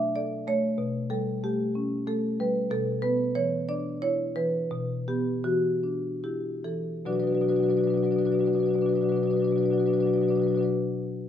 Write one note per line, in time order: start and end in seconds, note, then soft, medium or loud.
0.00 0.74 B2 medium
0.00 0.34 D4 soft
0.00 0.14 E5 medium
0.16 0.66 A4 soft
0.16 0.45 D5 medium
0.47 0.78 A3 soft
0.47 1.08 C#5 medium
0.78 2.66 B2 medium
1.10 1.61 G3 soft
1.10 1.41 A4 medium
1.44 1.94 A3 soft
1.44 2.04 G4 medium
1.75 2.26 C#4 soft
2.07 2.57 A3 soft
2.07 2.37 A4 medium
2.40 2.71 G3 soft
2.40 2.70 B4 medium
2.71 4.68 B2 medium
2.71 3.01 A4 medium
3.02 3.55 B3 soft
3.02 3.33 B4 medium
3.35 3.88 E3 soft
3.35 3.67 C#5 medium
3.69 4.22 D4 soft
3.69 4.00 D5 medium
4.02 4.57 E4 soft
4.02 4.35 C#5 medium
4.36 4.72 E3 soft
4.36 5.05 B4 medium
4.71 7.02 B2 medium
5.08 5.68 B3 soft
5.08 5.44 G4 medium
5.44 6.07 E3 soft
5.44 6.20 F#4 medium
5.83 6.48 D4 soft
6.24 6.90 E4 soft
6.24 6.63 G4 soft
6.64 7.06 E3 soft
6.64 7.04 A4 soft
7.06 7.14 B2 soft
7.06 7.15 F#3 soft
7.06 7.15 D4 soft
7.06 7.12 F#4 soft
7.06 7.13 B4 soft
7.06 7.13 D5 soft
7.12 7.24 B2 soft
7.12 7.23 F#3 soft
7.12 7.22 D4 soft
7.12 7.19 F#4 soft
7.12 7.19 B4 soft
7.12 7.20 D5 soft
7.19 7.33 F#3 soft
7.19 7.30 D4 soft
7.19 7.27 F#4 soft
7.19 7.27 B4 soft
7.19 7.28 D5 soft
7.24 7.32 B2 soft
7.24 7.35 F#4 soft
7.24 7.34 B4 soft
7.28 7.37 D4 soft
7.28 7.35 D5 soft
7.32 7.41 B2 soft
7.32 7.41 F#3 soft
7.32 7.42 F#4 soft
7.32 7.41 B4 soft
7.32 7.41 D5 soft
7.37 7.45 D4 soft
7.37 7.48 B4 soft
7.37 7.49 D5 soft
7.41 7.51 B2 soft
7.41 7.50 F#3 soft
7.41 7.52 D4 soft
7.41 7.49 F#4 soft
7.48 7.60 B2 soft
7.48 7.60 F#3 soft
7.48 7.59 D4 soft
7.48 7.56 F#4 soft
7.48 7.55 B4 soft
7.48 7.56 D5 soft
7.55 7.66 D4 soft
7.55 7.64 F#4 soft
7.55 7.63 B4 soft
7.55 7.63 D5 soft
7.60 7.69 B2 soft
7.60 7.69 F#3 soft
7.60 7.70 B4 soft
7.60 7.70 D5 soft
7.64 7.74 D4 soft
7.64 7.71 F#4 soft
7.69 7.77 B2 soft
7.69 7.77 F#3 soft
7.69 7.79 F#4 soft
7.69 7.77 B4 soft
7.69 7.77 D5 soft
7.74 7.87 B2 soft
7.74 7.86 F#3 soft
7.74 7.81 D4 soft
7.74 7.84 B4 soft
7.74 7.83 D5 soft
7.79 7.88 D4 soft
7.79 7.87 F#4 soft
7.83 7.97 B2 soft
7.83 7.94 F#3 soft
7.83 7.94 F#4 soft
7.83 7.90 B4 soft
7.83 7.91 D5 soft
7.88 7.95 D4 soft
7.88 7.97 B4 soft
7.88 7.97 D5 soft
7.94 8.07 B2 soft
7.94 8.03 F#3 soft
7.94 8.04 D4 soft
7.94 8.03 F#4 soft
7.94 8.04 B4 soft
7.94 8.05 D5 soft
8.03 8.16 B2 soft
8.03 8.12 F#3 soft
8.03 8.11 D4 soft
8.03 8.11 F#4 soft
8.03 8.12 B4 soft
8.03 8.12 D5 soft
8.11 8.22 F#3 soft
8.11 8.18 D4 soft
8.11 8.19 F#4 soft
8.11 8.18 B4 soft
8.11 8.19 D5 soft
8.16 8.26 B2 soft
8.16 8.25 D4 soft
8.16 8.27 F#4 soft
8.16 8.25 B4 soft
8.16 8.25 D5 soft
8.22 8.31 F#3 soft
8.22 8.33 D4 soft
8.22 8.31 B4 soft
8.22 8.32 D5 soft
8.26 8.35 B2 soft
8.26 8.34 F#4 soft
8.31 8.39 F#3 soft
8.31 8.40 D4 soft
8.31 8.41 F#4 soft
8.31 8.39 B4 soft
8.31 8.39 D5 soft
8.35 8.44 B2 soft
8.35 8.48 F#3 soft
8.35 8.46 D5 soft
8.39 8.47 D4 soft
8.39 8.47 F#4 soft
8.39 8.46 B4 soft
8.44 8.55 B2 soft
8.44 8.57 F#3 soft
8.44 8.55 D4 soft
8.44 8.56 F#4 soft
8.44 8.53 B4 soft
8.44 8.53 D5 soft
8.53 8.65 B2 soft
8.53 8.66 F#3 soft
8.53 8.62 D4 soft
8.53 8.63 F#4 soft
8.53 8.60 B4 soft
8.53 8.59 D5 soft
8.59 8.69 D4 soft
8.59 8.71 F#4 soft
8.59 8.67 B4 soft
8.59 8.66 D5 soft
8.65 8.75 B2 soft
8.65 8.75 F#3 soft
8.65 8.74 B4 soft
8.65 8.74 D5 soft
8.69 8.75 D4 soft
8.69 8.79 F#4 soft
8.74 8.85 B2 soft
8.74 8.86 F#3 soft
8.74 8.82 D4 soft
8.74 8.81 B4 soft
8.74 8.81 D5 soft
8.79 8.89 D4 soft
8.79 8.86 F#4 soft
8.79 8.89 B4 soft
8.79 8.89 D5 soft
8.85 8.94 B2 soft
8.85 8.96 F#3 soft
8.85 8.97 D4 soft
8.85 8.93 F#4 soft
8.85 8.95 B4 soft
8.85 8.95 D5 soft
8.93 9.03 B2 soft
8.93 9.06 F#3 soft
8.93 9.04 D4 soft
8.93 9.01 F#4 soft
8.93 9.02 B4 soft
8.93 9.02 D5 soft
9.01 9.12 B2 soft
9.01 9.12 D4 soft
9.01 9.09 F#4 soft
9.01 9.09 B4 soft
9.01 9.10 D5 soft
9.06 9.14 F#3 soft
9.06 9.18 F#4 soft
9.06 9.16 B4 soft
9.10 9.23 B2 soft
9.10 9.20 D4 soft
9.10 9.16 D5 soft
9.14 9.22 F#3 soft
9.14 9.26 F#4 soft
9.14 9.23 B4 soft
9.14 9.23 D5 soft
9.20 9.33 B2 soft
9.20 9.31 F#3 soft
9.20 9.27 D4 soft
9.20 9.30 B4 soft
9.20 9.31 D5 soft
9.26 9.34 D4 soft
9.26 9.33 F#4 soft
9.30 9.43 B2 soft
9.30 9.39 F#3 soft
9.30 9.40 F#4 soft
9.30 9.36 B4 soft
9.30 9.38 D5 soft
9.34 9.42 D4 soft
9.34 9.44 B4 soft
9.34 9.45 D5 soft
9.39 9.52 B2 soft
9.39 9.48 F#3 soft
9.39 9.49 D4 soft
9.39 9.48 F#4 soft
9.44 9.56 F#4 soft
9.44 9.51 B4 soft
9.44 9.51 D5 soft
9.48 9.61 B2 soft
9.48 9.56 F#3 soft
9.48 9.56 D4 soft
9.48 9.58 B4 soft
9.48 9.58 D5 soft
9.56 9.64 F#3 soft
9.56 9.64 D4 soft
9.56 9.63 F#4 soft
9.56 9.65 B4 soft
9.56 9.66 D5 soft
9.61 9.70 B2 soft
9.61 9.73 F#3 soft
9.61 9.71 D4 soft
9.61 9.71 F#4 soft
9.61 9.72 B4 soft
9.66 9.73 D5 soft
9.70 9.80 B2 soft
9.70 9.81 F#3 soft
9.70 9.79 D4 soft
9.70 9.78 F#4 soft
9.70 9.79 B4 soft
9.70 9.80 D5 soft
9.78 9.90 B2 soft
9.78 9.89 F#3 soft
9.78 9.88 D4 soft
9.78 9.86 F#4 soft
9.78 9.86 B4 soft
9.78 9.87 D5 soft
9.86 9.99 B2 soft
9.86 9.97 F#3 soft
9.86 9.95 D4 soft
9.86 9.93 F#4 soft
9.86 9.93 B4 soft
9.86 9.94 D5 soft
9.93 10.05 F#3 soft
9.93 10.02 D4 soft
9.93 10.00 F#4 soft
9.93 10.00 B4 soft
9.93 10.01 D5 soft
9.99 10.08 B2 soft
9.99 10.09 D4 soft
9.99 10.07 F#4 soft
9.99 10.07 B4 soft
9.99 10.07 D5 soft
10.05 10.18 B2 soft
10.05 10.13 F#3 soft
10.05 10.16 F#4 soft
10.05 10.14 B4 soft
10.05 10.13 D5 soft
10.09 10.16 D4 soft
10.13 10.21 F#3 soft
10.13 10.23 D4 soft
10.13 10.24 F#4 soft
10.13 10.21 B4 soft
10.13 10.21 D5 soft
10.18 10.28 B2 soft
10.18 10.32 F#3 soft
10.18 10.29 B4 soft
10.18 10.28 D5 soft
10.23 10.30 D4 soft
10.23 10.31 F#4 soft
10.28 10.38 B2 soft
10.28 10.37 D4 soft
10.28 10.40 F#4 soft
10.28 10.36 B4 soft
10.28 10.35 D5 soft
10.32 10.42 F#3 soft
10.32 10.42 D5 soft
10.36 10.47 B2 soft
10.36 10.45 D4 soft
10.36 10.47 F#4 soft
10.36 10.43 B4 soft
10.42 10.51 F#3 soft
10.42 10.52 D4 soft
10.42 10.51 B4 soft
10.42 10.48 D5 soft
10.47 10.57 B2 soft
10.47 10.60 F#3 soft
10.47 10.55 F#4 soft
10.47 10.56 D5 soft
10.51 10.59 D4 soft
10.51 10.61 F#4 soft
10.51 10.57 B4 soft
10.56 10.68 B2 soft
10.56 10.69 D4 soft
10.56 10.64 B4 soft
10.56 10.63 D5 soft
10.60 10.68 F#3 soft
10.60 10.68 F#4 soft
10.60 10.68 D5 soft
10.64 10.68 B4 soft